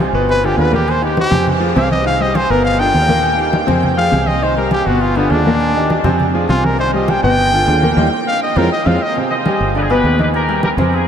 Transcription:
0.00 low timbale, low agogo
0.13 G1 B2 B3 B4, high conga
0.28 B4, high conga, low agogo
0.43 D3 D4 F4 G4, high conga, low agogo
0.57 D#2 D3 D4 F4 B4, high conga, low timbale
0.71 A#2 A#3 G4 A#4, high conga, low agogo
0.88 C5, high conga, low agogo
1.01 D#3 D#4 G4, high conga, low agogo
1.17 G4, high conga, low timbale
1.31 F2 C3 C4 C5, high conga, low conga, low agogo
1.47 high conga, low conga, low agogo
1.60 F3 F4 G#4, high conga
1.76 C2 C3 C4 C5 F5, high conga, low timbale, low agogo
1.91 D#5, high conga
2.04 D#3 D#4 D#5 F5, high conga, low agogo
2.20 G3 G4 C5 D#5, high conga
2.35 C5, high conga, low timbale, low agogo
2.50 G1 B2 B3 A#4 B4, high conga
2.64 F5, high conga, low agogo
2.79 D3 D4 F4 G5, high conga, low agogo
2.94 D#2 D3 D4 F4, high conga, low timbale
3.08 A#2 A#3 A#4, high conga, low agogo
3.23 high conga, low agogo
3.37 D#3 D#4 G4, high conga, low agogo
3.53 high conga, low timbale
3.67 F2 C3 C4 C5, high conga, low conga, low agogo
3.83 high conga, low conga, low agogo
3.97 F3 F4 G#4 F5, high conga
4.11 C2 C3 C4 C5, high conga, low timbale, low agogo
4.27 D#5, high conga
4.42 D#3 D#4 C5 D#5, high conga, low agogo
4.57 G3 G4 A#4 C5, high conga
4.71 G4, high conga, low timbale, low agogo
4.86 G1 B2 B3 F#4 B4, high conga
5.01 F4, high conga, low agogo
5.15 D3 B3 D4 F4, high conga, low agogo
5.30 D#2 D3 D4 F4, high conga, low timbale
5.45 A#2 A#3 A#4, high conga, low agogo
5.60 high conga, low agogo
5.75 D#3 D#4 G4, high conga, low agogo
5.90 high conga, low timbale
6.04 F2 C3 C4 C5, high conga, low conga, low agogo
6.19 high conga, low conga, low agogo
6.34 F3 F4 G#4, high conga
6.49 C2 C3 C4 F4 C5, high conga, low timbale, low agogo
6.64 A#4, high conga
6.79 D#3 D#4 C5 D#5, high conga, low agogo
6.93 G3 G4 C5 D#5, high conga
7.08 G5, high conga, low timbale, low agogo
7.23 G1 B2 B3 B4 G5, high conga
7.37 high conga, low agogo
7.52 D3 D4 F4, high conga, low agogo
7.66 D#2 D3 D4 F4, high conga, low timbale
7.82 A#2 A#3 A#4, high conga, low agogo
7.96 D#2 G3 A#3 D#4, high conga, high timbale
8.28 F5
8.43 D#5
8.56 F2 G#3 C4 F4 A#4, high conga, high timbale
8.72 D#5
8.86 F2 G#3 C4 F4 F5, high conga, high timbale
9.02 D#5
9.15 C3 C4 C5, high conga, low agogo
9.31 C5 D#5, high conga
9.45 G3 G4 G5, high conga, low timbale, low agogo
9.60 G1, high conga
9.75 D3 D4 G4 B4 D5, high conga, low agogo
9.82 G#4
9.89 B2 B3 G4 B4, high conga, low agogo
10.04 D#2, high conga, low timbale
10.19 D#3 D#4 G4 B4 D#5, high conga, low agogo
10.34 G4 A#4, low agogo
10.49 G3 G4 G5, high conga, low agogo
10.63 G4 A#4, high conga, low timbale
10.77 F2 C4 G4 A#4 C5 C6, high conga, low conga, low agogo
10.93 F4 G#4, high conga, low agogo

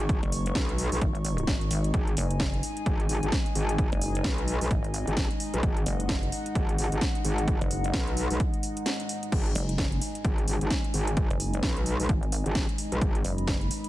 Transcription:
Already playing: G#1 G#3 D#4 D#5 C#6
0.09 kick, closed hi-hat
0.23 F#1, closed hi-hat
0.32 open hi-hat
0.46 closed hi-hat
0.55 B1, kick, snare, closed hi-hat
0.69 closed hi-hat
0.78 open hi-hat
0.92 B1, open hi-hat
1.01 G#1, kick, closed hi-hat
1.15 closed hi-hat
1.25 open hi-hat
1.38 closed hi-hat
1.47 G#1, kick, snare, closed hi-hat
1.61 closed hi-hat
1.71 G#1, open hi-hat
1.84 closed hi-hat
1.94 G#1 G#5, kick, closed hi-hat
2.07 closed hi-hat
2.17 F#1, open hi-hat
2.31 closed hi-hat
2.40 kick, snare, closed hi-hat
2.54 closed hi-hat
2.63 open hi-hat
2.77 closed hi-hat
2.86 G#1, kick, closed hi-hat
3.00 closed hi-hat
3.09 G#1, open hi-hat
3.23 G#1, closed hi-hat
3.32 kick, snare, closed hi-hat
3.46 closed hi-hat
3.55 G#1, open hi-hat
3.69 closed hi-hat
3.78 kick, closed hi-hat
3.92 F#1, closed hi-hat
4.01 open hi-hat
4.15 closed hi-hat
4.24 B1, kick, snare, closed hi-hat
4.38 closed hi-hat
4.48 open hi-hat
4.61 B1, open hi-hat
4.71 G#1, kick, closed hi-hat
4.84 closed hi-hat
4.94 open hi-hat
5.07 G#1, closed hi-hat
5.17 kick, snare, closed hi-hat
5.31 closed hi-hat
5.40 open hi-hat
5.54 B1, closed hi-hat
5.63 G#1 F#5, kick, closed hi-hat
5.77 closed hi-hat
5.86 F#1, open hi-hat
6.00 closed hi-hat
6.09 kick, snare, closed hi-hat
6.23 closed hi-hat
6.32 open hi-hat
6.46 closed hi-hat
6.55 G#1, kick, closed hi-hat
6.69 closed hi-hat
6.78 G#1, open hi-hat
6.92 G#1, closed hi-hat
7.01 kick, snare, closed hi-hat
7.15 closed hi-hat
7.25 G#1, open hi-hat
7.38 closed hi-hat
7.48 kick, closed hi-hat
7.61 F#1, closed hi-hat
7.71 open hi-hat
7.84 closed hi-hat
7.94 B1, kick, snare, closed hi-hat
8.07 closed hi-hat
8.17 open hi-hat
8.30 B1, open hi-hat
8.40 kick, closed hi-hat
8.54 closed hi-hat
8.63 open hi-hat
8.77 closed hi-hat
8.86 snare, closed hi-hat
9.00 closed hi-hat
9.09 open hi-hat
9.23 closed hi-hat
9.32 G#1 G#5, kick, closed hi-hat, crash
9.46 closed hi-hat
9.55 F#1, open hi-hat
9.69 closed hi-hat
9.78 kick, snare, closed hi-hat
9.92 closed hi-hat
10.02 open hi-hat
10.15 closed hi-hat
10.25 G#1, kick, closed hi-hat
10.38 closed hi-hat
10.48 G#1, open hi-hat
10.61 G#1, closed hi-hat
10.70 kick, snare, closed hi-hat
10.84 closed hi-hat
10.94 G#1, open hi-hat
11.07 closed hi-hat
11.17 kick, closed hi-hat
11.30 F#1, closed hi-hat
11.40 open hi-hat
11.54 closed hi-hat
11.63 B1, kick, snare, closed hi-hat
11.77 closed hi-hat
11.86 open hi-hat
12.00 B1, open hi-hat
12.09 G#1, kick, closed hi-hat
12.23 closed hi-hat
12.32 open hi-hat
12.46 G#1, closed hi-hat
12.55 kick, snare, closed hi-hat
12.69 closed hi-hat
12.78 open hi-hat
12.92 B1, closed hi-hat
13.01 G#1 B5, kick, closed hi-hat
13.15 closed hi-hat
13.24 F#1, open hi-hat
13.38 closed hi-hat
13.47 kick, snare, closed hi-hat
13.61 closed hi-hat
13.71 open hi-hat
13.84 closed hi-hat

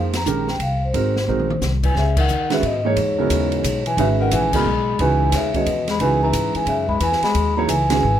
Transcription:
Already playing: F2 F3 A#3 D#4 G#4 C5
0.13 A#5, snare, ride
0.26 A#1 D#3 G#3 C#4 G4 A#4, hi-hat pedal
0.48 G5, snare
0.59 C2 F5, ride
0.85 C5
0.93 G#1 G#3 C4 D#4 F#4 A#4, ride
1.16 snare
1.27 A#1 G#3 C4 D#4 F#4 A#4, mid tom
1.39 mid tom
1.50 mid tom
1.62 C2, snare, hi-hat pedal
1.83 E3 G#5, kick, crash
1.95 C#2 C#3 E5, snare
2.17 D#3 F#5, kick, crash
2.28 D#2, hi-hat pedal
2.50 C#3 D#3 G#3 C#4 F#4 B4 E5, snare, ride
2.62 G#2 B2 D#5, ride
2.84 G#2 E3 A#3 D#4 G#4 C#5
2.96 E2, ride
3.18 C#3 F#3 B3 E4 A#4
3.30 D#2, hi-hat pedal, ride
3.52 ride
3.63 B1, hi-hat pedal, ride
3.86 E3 G#5, ride
3.97 G#1 C#3 D#3 G#3 C#4 F#4 B4 E5, ride
4.20 D#3 F#5
4.31 A#1 E3 G#5, hi-hat pedal, ride
4.53 C#3 F#3 G#3 B3 E4 A#4 B5, kick, crash
4.65 B1
4.99 C#2 E3 G#3 C#4 D#4 F#4 B4 G#5, ride
5.32 D#2 C#3 E5, snare, hi-hat pedal, ride
5.54 B2 D#3 G#3 C#4 F#4 C#5 D#5, kick, ride
5.66 E2, ride
5.88 G#3 B5, snare, ride
5.99 C#2 E3 G#3 C#4 D#4 F#4 B4 G#5, ride
6.23 E3 A#5
6.33 G#2, hi-hat pedal, ride
6.55 E3 G#5, muted upright bass stroke, ride
6.66 F#2 C#3 E5, ride
6.88 G#3 B5, kick
7.00 E2 E3 G#5, ride
7.12 snare
7.22 G#3 B5, muted upright bass stroke, snare, ride
7.34 D#2, ride
7.57 E3 F#3 A#3 D#4 G#4 C#5 A#5
7.68 C#2 E3 G#5, hi-hat pedal, ride
7.90 D#3 E3 G#3 C#4 F#4 G#4 G#5, snare, ride
8.03 G#1

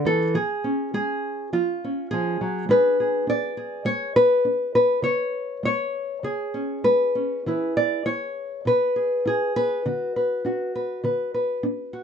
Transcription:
Already playing: C#4 F#4
0.05 E3 A4
0.34 F3 G#4
0.64 C#4
0.94 G#3 G#4
1.53 F3 F4
1.84 C#4
2.11 F3 G#4
2.41 F#3
2.69 G#3 D4 G#4 B4
3.00 G#4
3.27 D4 D5
3.57 G#4
3.85 G#3 C#5
4.16 B4
4.45 D4
4.75 B4
5.02 C#3 C#5
5.63 G#3 C#5
6.23 C#3 G#4
6.54 C#4
6.84 G#3 B4
7.15 C#4
7.46 E3 E4 G#4 B4
7.77 D5
8.06 E4 C#5
8.65 B2 B4
8.96 G#4
9.26 E4 G#4
9.56 B4
9.86 D3 F#4
10.16 B4
10.45 D4 F#4
10.76 B4
11.04 D3 B4
11.34 B4
11.63 D4
11.93 F#4

